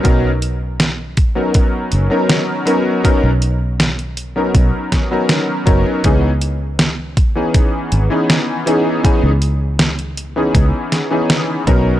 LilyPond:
<<
  \new Staff \with { instrumentName = "Electric grand piano" } { \time 4/4 \key cis \dorian \tempo 4 = 80 <fis b cis' dis' ais'>16 r4. <fis b cis' dis' ais'>4 <fis b cis' dis' ais'>8. <fis b cis' dis' ais'>8 | <fis b cis' dis' ais'>16 r4. <fis b cis' dis' ais'>4 <fis b cis' dis' ais'>8. <fis b cis' dis' ais'>8 | <e b cis' dis' gis'>16 r4. <e b cis' dis' gis'>4 <e b cis' dis' gis'>8. <e b cis' dis' gis'>8 | <e b cis' dis' gis'>16 r4. <e b cis' dis' gis'>4 <e b cis' dis' gis'>8. <fis b cis' dis' ais'>8 | }
  \new Staff \with { instrumentName = "Fingered electric bass" } { \clef bass \time 4/4 \key cis \dorian b,,2 r8 fis,,16 r4 r16 | r16 b,,4.~ b,,16 b,,16 r4 r16 fis,,16 r16 | cis,2 r8 gis,,16 r4 r16 | r16 cis,4.~ cis,16 cis,16 r4 r16 b,,8 | }
  \new DrumStaff \with { instrumentName = "Drums" } \drummode { \time 4/4 <hh bd>8 hh8 <hh sn>8 <hh bd>8 <hh bd>8 hh8 <hh sn>8 hh8 | <hh bd>8 hh8 <hh sn>16 hh16 hh8 <hh bd>8 <hh bd sn>8 <hh sn>8 <hh bd>8 | <hh bd>8 hh8 <hh sn>8 <hh bd>8 <hh bd>8 hh8 <hh sn>8 hh8 | <hh bd>8 hh8 <hh sn>16 hh16 hh8 <hh bd>8 <hh sn>8 <hh sn>8 <hh bd>8 | }
>>